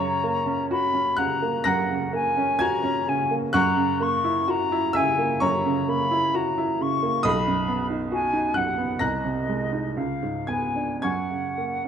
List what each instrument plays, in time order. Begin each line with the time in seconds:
Already playing: grand piano F#2 C#5 A#5 C#6, flute A#5
0.00 grand piano C#3
0.24 grand piano A#3
0.46 grand piano C#4
0.71 grand piano F#4, flute B5
0.94 grand piano C#4
1.17 grand piano C#3 F#5 F#6, flute A#5
1.42 grand piano A#3
1.64 grand piano F#2 A#5 F#6 A#6, flute F#5
1.90 grand piano C#3
2.13 grand piano A#3, flute G#5
2.37 grand piano C#4
2.59 grand piano F#4 G#5 G#6, flute A#5
2.83 grand piano C#4
3.07 grand piano C#3, flute G#5
3.31 grand piano A#3
3.53 grand piano F#2 F#5 C#6 F#6, flute A#5
3.76 grand piano C#3
4.00 grand piano A#3, flute C#6
4.24 grand piano E4
4.48 grand piano F#4, flute A#5
4.72 grand piano E4
4.93 grand piano C#3 E5 E6, flute G#5
5.18 grand piano A#3
5.40 grand piano F#2 C#5 A#5 C#6, flute A#5
5.66 grand piano C#3
5.88 grand piano A#3, flute B5
6.11 grand piano E4
6.34 grand piano F#4, flute A#5
6.58 grand piano E4
6.81 grand piano C#3, flute C#6
7.03 grand piano A#3
7.23 grand piano B1 D#5 B5 D#6, flute B5
7.47 grand piano F#2
7.68 grand piano B3
7.90 grand piano D#4
8.12 grand piano F#4, flute G#5
8.33 grand piano D#4
8.54 grand piano F#2 F#5 F#6, flute F#5
8.78 grand piano B3
8.99 grand piano C2 A#5 F#6 A#6, flute D#5
9.25 grand piano C3
9.48 grand piano G#3
9.72 grand piano D#4
9.97 grand piano C#2, flute F5
10.23 grand piano G#2
10.47 grand piano B3 G#5 G#6, flute G#5
10.76 grand piano D4
11.02 grand piano F#2 G#5 C#6 G#6, flute F#5
11.31 grand piano C#3
11.58 grand piano A#3
11.85 grand piano C#4